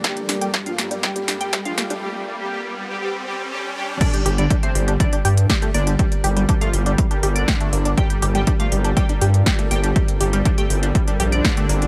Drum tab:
CC |----------------|----------------|x---------------|----------------|
HH |xxoxxxoxxxoxxxox|----------------|xxoxxxoxxxoxxxox|xxoxxxoxxxoxxxox|
SD |o-o-o-o-o-o-o-o-|----------------|------------o---|------------o---|
T1 |----------------|--------------o-|----------------|----------------|
T2 |----------------|---------------o|----------------|----------------|
BD |o---o---o---o---|----------------|o---o---o---o---|o---o---o---o---|

CC |----------------|----------------|
HH |xxoxxxoxxxoxxxox|xxoxxxoxxxoxxxox|
SD |------------o---|------------o---|
T1 |----------------|----------------|
T2 |----------------|----------------|
BD |o---o---o---o---|o---o---o---o---|